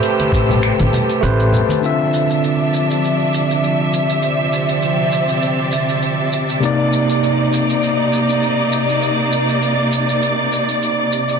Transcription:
Already playing: C3 A3 G4 A4 B4 C5 A5
0.03 closed hi-hat, shaker
0.20 closed hi-hat, high conga
0.32 A1, kick, shaker
0.49 low conga, shaker
0.63 finger snap, closed hi-hat, shaker
0.79 A1, closed hi-hat, high conga
0.93 low conga, shaker
1.10 closed hi-hat, shaker
1.21 A1 A3 G4 B4 C5, closed hi-hat, high conga, shaker
1.40 closed hi-hat
1.52 low conga, shaker
1.69 closed hi-hat, high conga, shaker
1.81 C3 D3 F3 C4 D4 F4 D5 E5 D6, shaker
1.86 E5
2.14 shaker
2.30 shaker
2.44 shaker
2.74 shaker
2.91 shaker
3.04 shaker
3.34 shaker
3.51 shaker
3.64 shaker
3.94 shaker
4.10 shaker
4.23 C4, shaker
4.53 shaker
4.69 shaker
4.82 shaker
5.12 shaker
5.29 shaker
5.42 shaker
5.72 shaker
5.89 shaker
6.02 shaker
6.33 shaker
6.49 shaker
6.60 C3 A#3 D#4 D5, shaker
6.65 D5
6.93 shaker
7.10 shaker
7.23 shaker
7.53 shaker
7.70 shaker
7.83 shaker
8.13 shaker
8.30 shaker
8.43 shaker
8.73 shaker
8.89 shaker
9.03 shaker
9.32 shaker
9.49 shaker
9.63 shaker
9.93 shaker
10.09 shaker
10.23 shaker
10.53 shaker
10.69 shaker
10.83 shaker
11.12 shaker
11.29 shaker

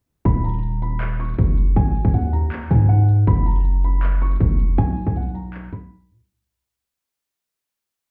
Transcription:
0.25 D#1 B5, kick, closed hi-hat
0.44 A#5, closed hi-hat
0.49 closed hi-hat
0.54 closed hi-hat
0.58 closed hi-hat
0.63 closed hi-hat
0.82 B5, closed hi-hat
1.00 clap, closed hi-hat
1.20 C#6, closed hi-hat
1.24 closed hi-hat
1.29 closed hi-hat
1.34 closed hi-hat
1.38 F#1, kick, closed hi-hat
1.58 closed hi-hat
1.76 G#1 G#5, kick, closed hi-hat
1.95 open hi-hat
2.04 G#1 G#5, kick
2.14 D#2 F#5, closed hi-hat
2.33 A#5, closed hi-hat
2.51 clap, closed hi-hat
2.71 G#2 G#5, kick, closed hi-hat
2.89 F#5
3.09 closed hi-hat
3.27 F#1 B5, kick, closed hi-hat
3.46 A#5, closed hi-hat
3.51 closed hi-hat
3.56 closed hi-hat
3.60 closed hi-hat
3.64 closed hi-hat
3.84 B5, closed hi-hat
4.02 clap, closed hi-hat
4.22 C#6, closed hi-hat
4.26 closed hi-hat
4.31 closed hi-hat
4.36 closed hi-hat
4.40 F#1, kick, closed hi-hat
4.59 F1, closed hi-hat
4.78 B1 G#5, kick, closed hi-hat
4.97 open hi-hat
5.07 B1 G#5, kick
5.16 B1 F#5, closed hi-hat
5.22 closed hi-hat
5.29 closed hi-hat
5.35 A#5, closed hi-hat
5.53 clap, closed hi-hat
5.72 B1 B5, kick, closed hi-hat
6.10 B2, closed hi-hat
6.20 B1

